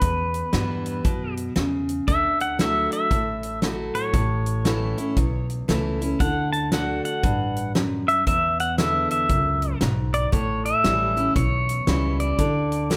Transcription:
0.00 1.01 E2 medium
0.00 0.41 E2 medium
0.00 1.34 B4 loud
0.00 kick medium
0.00 closed hi-hat medium
0.34 closed hi-hat medium
0.53 0.97 G2 medium
0.53 1.03 E3 medium
0.53 1.03 G3 medium
0.53 1.03 B3 medium
0.53 1.04 E4 medium
0.53 snare loud
0.53 closed hi-hat medium
0.86 closed hi-hat medium
1.04 1.49 F#2 medium
1.04 1.54 B2 medium
1.04 kick loud
1.04 closed hi-hat medium
1.37 closed hi-hat medium
1.56 2.00 E2 medium
1.56 2.06 C#3 medium
1.56 snare loud
1.56 closed hi-hat medium
1.89 closed hi-hat medium
2.08 2.86 D2 medium
2.08 3.07 D3 medium
2.08 2.38 E5 loud
2.08 kick medium
2.08 closed hi-hat medium
2.40 2.59 F#5 loud
2.40 closed hi-hat medium
2.59 3.09 F#3 soft
2.59 3.09 A3 medium
2.59 3.09 E4 medium
2.59 3.10 F#4 medium
2.59 2.91 E5 medium
2.59 snare loud
2.59 closed hi-hat medium
2.92 3.59 E5 medium
2.92 closed hi-hat medium
3.11 3.90 A1 medium
3.11 4.10 A2 medium
3.11 kick loud
3.11 closed hi-hat medium
3.43 closed hi-hat medium
3.62 4.12 F#3 medium
3.62 4.12 A3 medium
3.62 4.13 E4 medium
3.62 4.13 F#4 medium
3.62 snare medium
3.62 closed hi-hat medium
3.95 5.46 C#5 loud
3.95 closed hi-hat medium
4.14 4.92 A1 medium
4.14 5.13 A2 medium
4.14 kick loud
4.14 closed hi-hat medium
4.46 closed hi-hat medium
4.65 4.97 E3 medium
4.65 4.97 A3 medium
4.65 4.97 C#4 medium
4.65 4.96 E4 medium
4.65 snare loud
4.65 closed hi-hat medium
4.98 5.17 C#4 soft
4.98 5.16 E4 medium
4.98 closed hi-hat medium
5.17 5.61 B1 medium
5.17 6.17 E2 medium
5.17 kick loud
5.17 closed hi-hat medium
5.50 closed hi-hat soft
5.68 6.13 C#2 medium
5.68 6.00 E3 medium
5.68 6.00 A3 medium
5.68 6.00 C#4 medium
5.68 6.00 E4 medium
5.68 snare medium
5.68 closed hi-hat medium
6.01 6.20 C#4 soft
6.01 6.20 E4 soft
6.01 closed hi-hat medium
6.20 6.99 D2 medium
6.20 6.71 D3 medium
6.20 6.52 F#5 medium
6.20 kick loud
6.20 closed hi-hat medium
6.53 6.70 A5 loud
6.53 closed hi-hat soft
6.72 7.22 D3 medium
6.72 7.22 A3 medium
6.72 7.22 D4 medium
6.72 7.22 F#4 medium
6.72 7.04 F#5 medium
6.72 snare loud
6.72 closed hi-hat medium
7.05 7.71 F#5 medium
7.05 closed hi-hat medium
7.23 8.02 A1 medium
7.23 7.73 G2 medium
7.23 kick loud
7.23 closed hi-hat medium
7.57 closed hi-hat medium
7.75 8.25 F#2 medium
7.75 snare loud
7.75 closed hi-hat medium
8.08 8.26 E5 medium
8.08 closed hi-hat medium
8.27 9.26 E2 medium
8.27 9.05 E2 medium
8.27 8.60 E5 loud
8.27 kick medium
8.27 closed hi-hat medium
8.60 8.78 F#5 loud
8.60 closed hi-hat medium
8.78 9.28 D3 medium
8.78 9.28 G#3 medium
8.78 9.28 B3 medium
8.78 9.29 E4 medium
8.78 9.09 E5 medium
8.78 snare loud
8.78 closed hi-hat medium
9.11 9.78 E5 medium
9.11 closed hi-hat medium
9.29 9.73 C#2 medium
9.29 9.79 F#2 medium
9.29 kick loud
9.29 closed hi-hat medium
9.62 closed hi-hat medium
9.81 10.25 B1 medium
9.81 10.31 G#2 medium
9.81 snare medium
9.81 closed hi-hat medium
10.14 10.33 D5 medium
10.14 closed hi-hat medium
10.32 10.72 A1 medium
10.32 11.32 A2 medium
10.32 10.65 C#5 medium
10.32 kick loud
10.32 closed hi-hat medium
10.65 11.36 E5 loud
10.65 closed hi-hat medium
10.84 11.28 A1 medium
10.84 11.16 E3 medium
10.84 11.16 G3 medium
10.84 11.16 C#4 medium
10.84 11.15 E4 medium
10.84 snare loud
10.84 closed hi-hat medium
11.17 11.36 C#4 soft
11.17 11.35 E4 medium
11.17 closed hi-hat soft
11.36 11.80 B1 medium
11.36 12.35 E2 medium
11.36 12.20 C#5 medium
11.36 kick loud
11.36 closed hi-hat medium
11.69 closed hi-hat medium
11.87 12.31 C#2 medium
11.87 12.37 E3 medium
11.87 12.37 G3 medium
11.87 12.38 C#4 medium
11.87 12.38 E4 medium
11.87 snare loud
11.87 closed hi-hat medium
12.20 12.97 D5 medium
12.20 closed hi-hat medium
12.39 12.97 D2 medium
12.39 12.89 D3 medium
12.39 kick medium
12.39 closed hi-hat medium
12.72 closed hi-hat medium
12.90 12.97 D3 medium
12.90 12.97 A3 medium
12.90 12.97 D4 medium
12.90 12.97 F#4 medium
12.90 snare medium
12.90 closed hi-hat medium

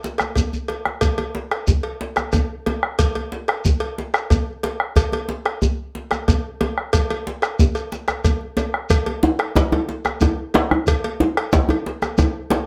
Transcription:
0.04 djembe slap medium
0.04 shekere soft
0.18 bombo rim medium
0.18 cowbell soft
0.18 djembe tone medium
0.18 shekere soft
0.36 bombo low medium
0.36 cowbell soft
0.36 djembe bass medium
0.36 shekere medium
0.53 djembe bass soft
0.53 shekere soft
0.68 cowbell soft
0.68 djembe slap soft
0.85 bombo rim medium
0.85 djembe slap medium
1.01 bombo low medium
1.01 cowbell medium
1.01 djembe slap soft
1.01 djembe bass medium
1.01 shekere medium
1.18 cowbell soft
1.18 djembe tone medium
1.35 djembe slap medium
1.51 bombo rim medium
1.51 cowbell soft
1.51 djembe slap soft
1.67 bombo low medium
1.67 djembe slap soft
1.67 djembe tone medium
1.67 djembe bass medium
1.67 shekere medium
1.83 cowbell soft
1.83 djembe slap soft
2.01 djembe slap medium
2.16 bombo rim medium
2.16 cowbell soft
2.16 djembe tone medium
2.16 shekere soft
2.33 bombo rim soft
2.33 bombo low loud
2.33 cowbell soft
2.33 djembe bass medium
2.33 shekere medium
2.66 cowbell soft
2.66 djembe slap medium
2.66 djembe tone medium
2.83 bombo rim medium
2.99 bombo low loud
2.99 cowbell medium
2.99 djembe slap soft
2.99 djembe bass medium
2.99 shekere medium
3.15 cowbell soft
3.15 djembe tone medium
3.32 djembe slap medium
3.48 bombo rim medium
3.48 cowbell soft
3.48 djembe slap soft
3.65 bombo low loud
3.65 djembe slap soft
3.65 djembe tone medium
3.65 djembe bass medium
3.65 shekere medium
3.80 cowbell soft
3.80 djembe slap soft
3.98 djembe slap medium
4.14 bombo rim medium
4.14 cowbell soft
4.14 shekere soft
4.30 bombo rim soft
4.30 bombo low loud
4.30 cowbell soft
4.30 djembe bass medium
4.30 shekere medium
4.63 cowbell soft
4.63 djembe slap medium
4.80 bombo rim medium
4.96 bombo low medium
4.96 cowbell medium
4.96 djembe slap soft
4.96 djembe bass medium
4.96 shekere medium
5.12 cowbell soft
5.12 djembe tone medium
5.29 djembe slap medium
5.45 bombo rim medium
5.45 cowbell soft
5.45 djembe slap soft
5.62 djembe slap soft
5.62 djembe tone medium
5.62 djembe bass medium
5.62 shekere medium
5.95 djembe slap medium
6.11 bombo rim medium
6.11 cowbell soft
6.11 djembe tone medium
6.11 shekere soft
6.28 bombo rim soft
6.28 bombo low loud
6.28 cowbell medium
6.28 djembe bass medium
6.28 shekere medium
6.61 cowbell soft
6.61 djembe slap medium
6.61 djembe tone medium
6.78 bombo rim medium
6.93 bombo low loud
6.93 cowbell medium
6.93 djembe slap soft
6.93 djembe bass medium
6.93 shekere medium
7.10 cowbell soft
7.10 djembe slap soft
7.10 djembe tone medium
7.27 djembe slap medium
7.42 bombo rim medium
7.42 cowbell soft
7.42 shekere soft
7.59 bombo low loud
7.59 djembe tone medium
7.59 djembe bass medium
7.59 shekere medium
7.75 cowbell soft
7.75 shekere soft
7.92 bombo rim soft
7.92 djembe slap medium
7.92 shekere soft
8.08 bombo rim medium
8.08 cowbell soft
8.08 djembe slap soft
8.08 djembe tone medium
8.08 shekere soft
8.24 bombo low loud
8.24 cowbell soft
8.24 djembe bass medium
8.24 shekere medium
8.41 djembe slap soft
8.57 cowbell soft
8.57 djembe slap medium
8.57 djembe tone medium
8.57 shekere soft
8.74 bombo rim medium
8.90 bombo low loud
8.90 cowbell medium
8.90 djembe slap soft
8.90 djembe bass medium
8.90 shekere medium
9.06 cowbell soft
9.06 djembe tone medium
9.23 djembe slap medium
9.23 djembe tone medium
9.39 bombo rim medium
9.39 cowbell soft
9.39 djembe slap soft
9.56 bombo low loud
9.56 djembe slap soft
9.56 djembe slap medium
9.56 djembe tone medium
9.56 djembe bass medium
9.56 shekere medium
9.72 cowbell soft
9.72 djembe slap soft
9.72 djembe tone medium
9.89 djembe slap medium
10.05 bombo rim medium
10.05 cowbell soft
10.05 djembe tone medium
10.05 shekere soft
10.21 bombo rim soft
10.21 bombo low loud
10.21 cowbell medium
10.21 djembe tone medium
10.21 djembe bass medium
10.21 shekere medium
10.54 cowbell medium
10.54 djembe slap medium
10.54 djembe tone medium
10.71 bombo rim medium
10.71 djembe tone medium
10.87 bombo low loud
10.87 cowbell medium
10.87 djembe slap soft
10.87 djembe bass medium
10.87 shekere medium
11.04 cowbell medium
11.04 djembe tone medium
11.20 djembe slap medium
11.20 djembe tone medium
11.37 bombo rim medium
11.37 cowbell medium
11.37 djembe slap soft
11.53 bombo low loud
11.53 djembe slap medium
11.53 djembe slap soft
11.53 djembe tone medium
11.53 djembe bass medium
11.53 shekere medium
11.69 cowbell medium
11.69 djembe slap soft
11.69 djembe tone medium
11.86 djembe slap medium
12.02 bombo rim medium
12.02 cowbell soft
12.02 djembe tone medium
12.02 shekere soft
12.18 bombo rim soft
12.18 bombo low loud
12.18 cowbell medium
12.18 djembe tone medium
12.18 djembe bass medium
12.18 shekere medium
12.50 cowbell medium
12.50 djembe slap medium
12.50 djembe tone medium

